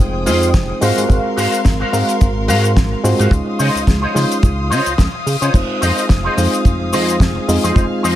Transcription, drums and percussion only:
0.00 cabasa
0.26 open hi-hat, cabasa
0.42 closed hi-hat, cabasa
0.54 kick, snare, closed hi-hat, cabasa
0.82 open hi-hat, cabasa
0.98 closed hi-hat, cabasa
1.10 kick, closed hi-hat, cabasa
1.37 open hi-hat, cabasa
1.53 closed hi-hat, cabasa
1.65 kick, snare, closed hi-hat, cabasa
1.93 open hi-hat, cabasa
2.09 closed hi-hat, cabasa
2.21 kick, closed hi-hat, cabasa
2.48 open hi-hat, cabasa
2.64 closed hi-hat, cabasa
2.77 kick, snare, closed hi-hat, cabasa
3.04 open hi-hat, cabasa
3.19 closed hi-hat, cabasa
3.31 kick, closed hi-hat, cabasa
3.60 open hi-hat, cabasa
3.75 closed hi-hat, cabasa
3.87 kick, snare, closed hi-hat, cabasa
4.16 snare, open hi-hat, cabasa
4.32 closed hi-hat, cabasa
4.43 kick, closed hi-hat, cabasa
4.72 open hi-hat, cabasa
4.86 closed hi-hat, cabasa
4.98 kick, snare, closed hi-hat, cabasa
5.27 open hi-hat, cabasa
5.42 closed hi-hat, cabasa
5.54 kick, closed hi-hat, crash, cabasa
5.82 open hi-hat, cabasa
5.98 closed hi-hat, cabasa
6.09 kick, snare, closed hi-hat, cabasa
6.37 open hi-hat, cabasa
6.53 closed hi-hat, cabasa
6.65 kick, closed hi-hat, cabasa
6.93 open hi-hat, cabasa
7.09 closed hi-hat, cabasa
7.20 kick, snare, closed hi-hat, cabasa
7.49 open hi-hat, cabasa
7.64 closed hi-hat, cabasa
7.76 kick, closed hi-hat, cabasa
8.04 open hi-hat, cabasa

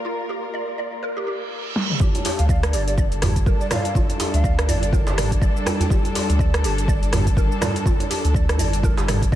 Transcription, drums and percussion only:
0.05 closed hi-hat
0.19 closed hi-hat
0.43 closed hi-hat
0.54 closed hi-hat
0.68 closed hi-hat
0.92 closed hi-hat
1.03 closed hi-hat
1.17 closed hi-hat
1.41 closed hi-hat
1.76 snare
1.90 mid tom
2.00 kick, djembe tone, shaker
2.15 closed hi-hat, djembe tone, shaker
2.25 open hi-hat, djembe slap, shaker
2.39 closed hi-hat, shaker
2.49 kick, shaker
2.63 cross-stick, closed hi-hat, shaker
2.73 open hi-hat, shaker
2.88 closed hi-hat, shaker
2.98 kick, shaker
3.12 closed hi-hat, shaker
3.22 cross-stick, mid tom, open hi-hat, djembe slap, djembe tone, djembe bass, shaker
3.36 kick, closed hi-hat, shaker
3.46 kick, shaker
3.61 shaker
3.71 cross-stick, mid tom, open hi-hat, djembe slap, djembe tone, shaker
3.85 closed hi-hat, shaker
3.95 kick, djembe tone, shaker
4.09 closed hi-hat, djembe tone, shaker
4.20 open hi-hat, djembe slap, shaker
4.34 closed hi-hat, shaker
4.44 kick, shaker
4.59 cross-stick, closed hi-hat, shaker
4.68 open hi-hat, djembe bass, shaker
4.83 closed hi-hat, shaker
4.93 kick, djembe tone, shaker
5.07 closed hi-hat, djembe slap, shaker
5.18 cross-stick, mid tom, open hi-hat, shaker
5.31 kick, closed hi-hat, shaker
5.42 kick, shaker
5.57 shaker
5.66 cross-stick, open hi-hat, djembe tone, shaker
5.80 closed hi-hat, djembe bass, shaker
5.90 kick, djembe tone, shaker
6.05 closed hi-hat, djembe tone, shaker
6.15 open hi-hat, djembe slap, shaker
6.30 closed hi-hat, shaker
6.39 kick, shaker
6.54 cross-stick, closed hi-hat, shaker
6.64 open hi-hat, shaker
6.78 closed hi-hat, shaker
6.88 kick, shaker
7.03 closed hi-hat, shaker
7.12 cross-stick, mid tom, open hi-hat, djembe slap, djembe tone, djembe bass, shaker
7.27 kick, closed hi-hat, shaker
7.37 kick, shaker
7.52 shaker
7.61 cross-stick, mid tom, open hi-hat, djembe slap, djembe tone, shaker
7.76 closed hi-hat, shaker
7.86 kick, djembe tone, shaker
8.00 closed hi-hat, djembe tone, shaker
8.11 open hi-hat, djembe slap, shaker
8.25 closed hi-hat, shaker
8.34 kick, shaker
8.49 cross-stick, closed hi-hat, shaker
8.58 open hi-hat, djembe bass, shaker
8.73 closed hi-hat, shaker
8.83 kick, djembe tone, shaker
8.97 closed hi-hat, djembe slap, shaker
9.08 cross-stick, mid tom, open hi-hat, shaker
9.22 kick, closed hi-hat, shaker
9.32 kick

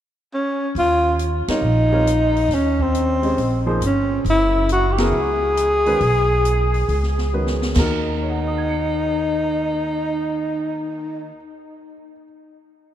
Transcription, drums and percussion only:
0.76 open hi-hat
1.19 closed hi-hat
1.48 snare, ride
2.07 cross-stick, closed hi-hat
2.36 open hi-hat
2.51 snare, open hi-hat
2.79 kick
2.95 closed hi-hat
3.23 open hi-hat
3.38 open hi-hat
3.82 cross-stick, closed hi-hat
4.26 open hi-hat
4.69 closed hi-hat
4.98 snare, ride
5.57 cross-stick, closed hi-hat
5.86 open hi-hat
6.01 open hi-hat
6.45 closed hi-hat
6.74 open hi-hat
6.89 open hi-hat
7.03 snare
7.18 snare
7.47 snare
7.62 snare
7.76 kick, snare, crash

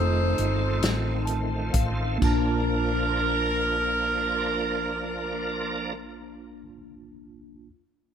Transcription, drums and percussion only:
0.38 closed hi-hat
0.82 snare, closed hi-hat
1.27 closed hi-hat
1.74 kick, closed hi-hat
2.22 kick, splash

